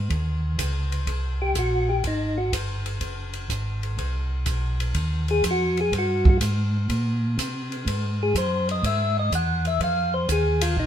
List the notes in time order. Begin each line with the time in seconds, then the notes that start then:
0.10 D#2, kick, ride
0.58 C#2, kick, hi-hat pedal, ride
0.92 ride
1.07 C2, kick, ride
1.42 G4
1.55 A#1 F#4, kick, hi-hat pedal, ride
1.89 G4
2.04 G#1 D#4, kick, ride
2.38 F#4
2.53 G1, kick, hi-hat pedal, ride
2.86 ride
3.01 F#1, kick, ride
3.33 ride
3.50 G#1, kick, hi-hat pedal, ride
3.83 ride
3.98 C2, kick, ride
4.46 B1, kick, hi-hat pedal, ride
4.80 ride
4.94 D#2, kick, ride
5.28 G#4, ride
5.43 F2, kick, hi-hat pedal, ride
5.51 F#4
5.77 G#4, ride
5.92 G2, kick, ride
5.98 F#4
6.25 kick
6.29 F#4
6.41 G#2, kick, hi-hat pedal, ride
6.89 A#2, kick, ride
7.38 C3, kick, hi-hat pedal, ride
7.72 ride
7.86 G#2, kick, ride
8.23 G#4
8.35 F#2 C5, kick, hi-hat pedal, ride
8.69 D#5, ride
8.83 G#2 E5, kick, ride
9.19 D#5
9.32 E2 F#5, kick, hi-hat pedal, ride
9.65 E5, ride
9.80 F2 F5, kick, ride
10.14 C5
10.29 D#2 G#4, kick, hi-hat pedal, ride
10.61 F4, ride
10.76 A#1 D#4, kick